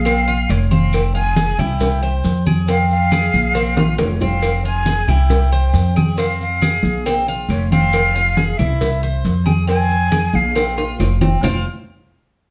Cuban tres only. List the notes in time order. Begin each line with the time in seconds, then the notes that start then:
0.05 C4
0.28 F4
0.71 C4
1.15 F4
1.37 G#4
1.59 E4
2.03 C5
2.46 G#4
2.68 C4
3.12 G#4
3.55 C4
3.77 F4
4.21 C4
4.65 F4
4.87 G#4
5.09 E4
5.52 C5
5.96 G#4
6.18 C4
6.62 G#4
7.06 C4
7.28 F4
7.72 C4
8.16 F4
8.37 G#4
8.59 E4
9.03 C5
9.46 G#4
9.67 C4
10.12 G#4
10.55 C4
10.78 F4
11.21 C4
11.43 F4 C5 F5